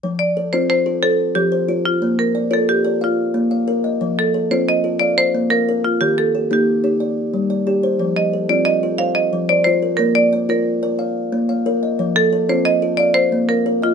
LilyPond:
<<
  \new Staff \with { instrumentName = "Marimba" } { \time 12/8 \key f \mixolydian \tempo 4. = 120 r8 d''4 c''8 c''4 a'4 g'4. f'8~ | f'8 bes'4 a'8 g'4 f'4 r2 | r8 a'4 c''8 ees''4 d''8 c''4 bes'4 f'8 | g'8 a'4 g'1 r8 |
r8 ees''4 d''8 ees''4 f''8 ees''4 d''8 c''4 | bes'8 d''4 bes'2 r2 r8 | r8 a'4 c''8 ees''4 d''8 c''4 bes'4 f'8 | }
  \new Staff \with { instrumentName = "Kalimba" } { \time 12/8 \key f \mixolydian << { r4 a'8 f'4 f'8 c''4. c''4. | r4 d''8 bes'4 bes'8 f''4. f''4 ees''8~ | ees''8 r8 a'8 f'4 f'8 f''4. f''4. | r4 g'8 ees'4 ees'8 d''4. d''4 c''8~ |
c''8 r8 a'8 f'4 f'8 c''4. c''4 bes'8~ | bes'8 r8 d''8 bes'4 bes'8 f''4. f''4 ees''8~ | ees''8 r8 a'8 f'4 f'8 f''4. f''4 ees''8 | } \\ { f4 r8 c'4 a'4 r8 f4 f'4 | bes4 r8 f'4 d''4 r8 bes4 bes'4 | f4 r8 c'4 a'8 r4 bes4 bes'4 | ees4 r8 bes4 g'8 r4 g4 g'4 |
f4 r8 c'4 a'4 r8 f4 f'4 | bes4 r8 f'4 d''4 r8 bes4 bes'4 | f4 r8 c'4 a'8 r4 bes4 bes'4 | } >> }
>>